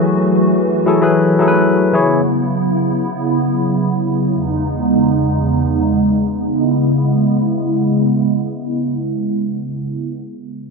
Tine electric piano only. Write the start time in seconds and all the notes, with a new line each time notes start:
Already playing: F#3 E4 G#4 A4 B4
0.85 F#3 E4 G#4 A4
1.01 F#3 E4 G#4 B4
1.39 F#3 E4 G#4 A4
1.48 B4
1.93 E3 E4 G#4 C#5